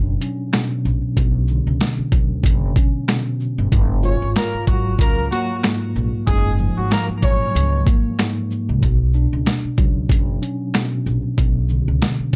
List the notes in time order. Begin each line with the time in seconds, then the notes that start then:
Already playing: F#1 B2 F#3 D4
0.21 C#4, closed hi-hat, shaker
0.53 B2, finger snap, snare, closed hi-hat
0.85 A#1, shaker
1.16 B1 B2, kick, closed hi-hat
1.48 D3, shaker
1.67 C#2
1.81 finger snap, snare, closed hi-hat
1.99 muted upright bass stroke
2.12 D2 F#3, kick, closed hi-hat, shaker
2.43 F#1, kick, closed hi-hat
2.76 C#4, kick, closed hi-hat, shaker
3.08 B2, finger snap, snare, closed hi-hat
3.40 shaker
3.58 G1
3.72 F#1 G#2, kick, closed hi-hat
4.03 C#4 F4 C#5, shaker
4.22 G#1
4.36 A#3 A#4, finger snap, snare, closed hi-hat
4.54 muted upright bass stroke
4.67 G#1 F#3 F#4, kick, closed hi-hat, shaker
4.99 C#2 A#3 A#4, kick, closed hi-hat
5.31 F#3 A#3 F#4, closed hi-hat, shaker
5.63 G#2, finger snap, snare, closed hi-hat
5.96 A#1, shaker
6.27 F#1 G#2 G#3 G#4, kick, closed hi-hat
6.58 F3, shaker
6.77 G#1 F#3 F#4
6.91 A#3 A#4, finger snap, snare, closed hi-hat
7.09 muted upright bass stroke
7.22 A#1 F#3 C#4 C#5, kick, closed hi-hat, shaker
7.55 C#2, closed hi-hat
7.85 A#3, kick, closed hi-hat, shaker
8.19 G#2, finger snap, snare, closed hi-hat
8.51 shaker
8.69 C2
8.80 B1 B2, kick, closed hi-hat
9.13 D4, shaker
9.33 C#2
9.46 finger snap, snare, closed hi-hat
9.65 muted upright bass stroke
9.78 C#2 F#3, kick, closed hi-hat, shaker
10.09 F#1, kick, closed hi-hat
10.42 C#4, closed hi-hat, shaker
10.74 B2, finger snap, snare, closed hi-hat
11.06 A#1, shaker
11.37 B1 B2, kick, closed hi-hat
11.69 D3, shaker
11.88 C#2
12.02 finger snap, snare, closed hi-hat
12.20 muted upright bass stroke